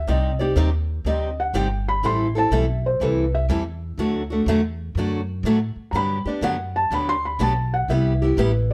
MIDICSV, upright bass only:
0, 0, Header, 1, 3, 480
1, 0, Start_track
1, 0, Key_signature, 1, "major"
1, 0, Tempo, 488361
1, 81, Time_signature, 4, 2, 24, 8
1, 8584, End_track
2, 0, Start_track
2, 0, Title_t, "Upright bass"
2, 0, Program_c, 0, 32
2, 73, Note_on_c, 0, 36, 80
2, 542, Note_off_c, 0, 36, 0
2, 546, Note_on_c, 0, 39, 86
2, 1019, Note_off_c, 0, 39, 0
2, 1028, Note_on_c, 0, 38, 82
2, 1500, Note_off_c, 0, 38, 0
2, 1508, Note_on_c, 0, 31, 86
2, 1980, Note_off_c, 0, 31, 0
2, 1995, Note_on_c, 0, 33, 80
2, 2461, Note_off_c, 0, 33, 0
2, 2467, Note_on_c, 0, 35, 84
2, 2939, Note_off_c, 0, 35, 0
2, 2949, Note_on_c, 0, 36, 78
2, 3420, Note_off_c, 0, 36, 0
2, 3427, Note_on_c, 0, 40, 90
2, 3899, Note_off_c, 0, 40, 0
2, 3908, Note_on_c, 0, 38, 78
2, 4379, Note_off_c, 0, 38, 0
2, 4385, Note_on_c, 0, 40, 86
2, 4857, Note_off_c, 0, 40, 0
2, 4864, Note_on_c, 0, 42, 82
2, 5333, Note_off_c, 0, 42, 0
2, 5339, Note_on_c, 0, 45, 85
2, 5642, Note_off_c, 0, 45, 0
2, 5825, Note_on_c, 0, 43, 84
2, 6126, Note_off_c, 0, 43, 0
2, 6303, Note_on_c, 0, 42, 84
2, 6777, Note_off_c, 0, 42, 0
2, 6787, Note_on_c, 0, 38, 80
2, 7259, Note_off_c, 0, 38, 0
2, 7263, Note_on_c, 0, 35, 90
2, 7736, Note_off_c, 0, 35, 0
2, 7748, Note_on_c, 0, 36, 81
2, 8219, Note_off_c, 0, 36, 0
2, 8226, Note_on_c, 0, 33, 89
2, 8584, Note_off_c, 0, 33, 0
2, 8584, End_track
3, 0, Start_track
3, 0, Title_t, "Muted upright bass strokes"
3, 5660, Note_on_c, 9, 29, 37
3, 5758, Note_off_c, 9, 29, 0
3, 6144, Note_on_c, 9, 29, 37
3, 6242, Note_off_c, 9, 29, 0
3, 8584, End_track
0, 0, End_of_file